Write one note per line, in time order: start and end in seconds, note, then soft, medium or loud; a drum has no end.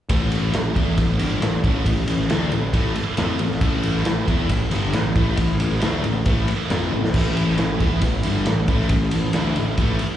0.09 0.51 A1 medium
0.09 0.53 A2 loud
0.09 0.54 E3 loud
0.09 10.17 A3 medium
0.09 0.54 A3 loud
0.09 10.17 E4 medium
0.09 10.17 B4 medium
0.09 kick loud
0.09 ride loud
0.32 ride medium
0.53 0.75 A1 medium
0.53 0.72 A2 medium
0.53 0.72 E3 medium
0.53 snare loud
0.53 ride medium
0.76 0.97 E2 medium
0.76 0.97 E3 loud
0.76 0.98 B3 loud
0.76 0.98 E4 medium
0.76 kick loud
0.76 ride medium
0.98 1.18 A1 medium
0.98 1.16 A2 medium
0.98 1.16 E3 medium
0.98 kick medium
0.98 ride medium
1.19 1.40 G1 medium
1.19 1.42 G2 medium
1.19 1.42 D3 medium
1.19 1.42 G3 loud
1.19 ride medium
1.41 1.62 A1 medium
1.41 1.60 A2 medium
1.41 1.60 E3 medium
1.41 snare loud
1.41 ride loud
1.64 1.84 A1 medium
1.64 1.86 A2 loud
1.64 1.86 E3 loud
1.64 1.86 A3 loud
1.64 kick loud
1.64 ride medium
1.86 2.06 A1 medium
1.86 2.05 A2 medium
1.86 2.05 E3 medium
1.86 kick loud
1.86 ride loud
2.07 2.28 A1 medium
2.07 2.26 A2 medium
2.07 2.26 E3 medium
2.07 ride medium
2.20 snare soft
2.30 2.51 D2 medium
2.30 2.52 D3 loud
2.30 2.52 A3 loud
2.30 2.52 D4 loud
2.30 snare loud
2.30 ride medium
2.52 2.73 A1 medium
2.52 2.70 A2 medium
2.52 2.70 E3 medium
2.52 ride medium
2.73 2.94 A1 medium
2.73 2.95 A2 loud
2.73 2.95 E3 medium
2.73 2.96 A3 medium
2.73 kick loud
2.73 ride loud
2.95 muted picked electric bass stroke soft
2.95 muted distorted electric guitar stroke medium
2.95 ride medium
3.17 3.39 F2 medium
3.17 3.39 F3 loud
3.17 3.40 C4 medium
3.17 3.40 F4 medium
3.17 snare loud
3.17 ride medium
3.39 3.61 A1 medium
3.39 3.58 A2 medium
3.39 3.58 E3 medium
3.39 ride medium
3.51 snare soft
3.61 4.03 A1 medium
3.61 4.05 A2 loud
3.61 4.06 E3 loud
3.61 4.06 A3 loud
3.61 kick loud
3.61 ride loud
3.83 ride medium
3.96 snare soft
4.05 4.26 A1 medium
4.05 4.24 A2 medium
4.05 4.24 E3 medium
4.05 snare loud
4.05 ride medium
4.28 4.49 E2 medium
4.28 4.49 E3 loud
4.28 4.50 B3 medium
4.28 4.50 E4 loud
4.28 kick loud
4.28 ride medium
4.49 4.70 A1 medium
4.49 4.68 A2 medium
4.49 4.68 E3 medium
4.49 kick medium
4.49 ride loud
4.71 4.92 G1 medium
4.71 4.93 G2 medium
4.71 4.94 D3 medium
4.71 4.94 G3 loud
4.71 ride medium
4.93 5.14 A1 medium
4.93 5.12 A2 medium
4.93 5.12 E3 medium
4.93 snare loud
4.93 ride loud
5.15 5.37 A1 loud
5.15 5.38 A2 medium
5.15 5.38 E3 medium
5.15 5.39 A3 loud
5.15 kick loud
5.15 ride medium
5.37 5.58 A1 medium
5.37 5.56 A2 medium
5.37 5.57 E3 medium
5.37 kick loud
5.37 ride loud
5.59 5.80 A1 medium
5.59 5.78 A2 medium
5.59 5.79 E3 medium
5.59 ride medium
5.72 snare soft
5.81 6.02 D2 medium
5.81 6.04 D3 medium
5.81 6.04 A3 loud
5.81 6.05 D4 medium
5.81 snare loud
5.81 ride loud
6.04 6.25 A1 medium
6.04 6.22 A2 medium
6.04 6.22 E3 medium
6.04 ride medium
6.26 6.47 A1 medium
6.26 6.48 A2 medium
6.26 6.48 E3 medium
6.26 6.48 A3 medium
6.26 kick loud
6.26 ride medium
6.47 muted picked electric bass stroke soft
6.47 muted distorted electric guitar stroke medium
6.47 ride medium
6.70 6.91 F2 medium
6.70 6.92 F3 medium
6.70 6.92 C4 medium
6.70 6.93 F4 loud
6.70 snare loud
6.70 ride medium
6.92 7.13 A1 medium
6.92 7.10 A2 medium
6.92 7.11 E3 medium
6.92 high tom medium
7.04 snare medium
7.14 7.55 A1 medium
7.14 7.57 A2 loud
7.14 7.58 E3 loud
7.14 7.59 A3 loud
7.14 kick loud
7.14 crash loud
7.37 ride medium
7.48 snare soft
7.58 7.79 A1 medium
7.58 7.76 A2 medium
7.58 7.76 E3 medium
7.58 snare loud
7.58 ride medium
7.80 8.01 E2 medium
7.80 8.02 E3 loud
7.80 8.03 B3 loud
7.80 8.03 E4 loud
7.80 kick loud
7.80 ride medium
8.02 8.23 A1 medium
8.02 8.21 A2 medium
8.02 8.21 E3 medium
8.02 kick medium
8.02 ride loud
8.23 8.45 G1 medium
8.23 8.46 G2 medium
8.23 8.47 D3 medium
8.23 8.47 G3 medium
8.23 ride medium
8.46 8.68 A1 medium
8.46 8.65 A2 medium
8.46 8.65 E3 medium
8.46 snare loud
8.46 ride loud
8.68 8.89 A1 loud
8.68 8.90 A2 loud
8.68 8.91 E3 loud
8.68 8.91 A3 loud
8.68 kick loud
8.68 ride medium
8.80 snare soft
8.89 9.11 A1 medium
8.89 9.09 A2 medium
8.89 9.09 E3 medium
8.89 kick loud
8.89 ride loud
9.11 9.34 A1 medium
9.11 9.31 A2 medium
9.11 9.31 E3 medium
9.11 ride medium
9.33 9.55 D2 medium
9.33 9.57 D3 medium
9.33 9.57 A3 medium
9.33 snare loud
9.33 ride loud
9.37 9.57 D4 medium
9.56 9.78 A1 medium
9.56 9.74 A2 medium
9.56 9.75 E3 medium
9.56 ride medium
9.77 9.99 A1 medium
9.77 9.99 A2 medium
9.77 10.01 E3 medium
9.77 10.01 A3 medium
9.77 kick loud
9.77 ride medium
9.99 muted distorted electric guitar stroke medium
9.99 muted picked electric bass stroke soft
9.99 ride medium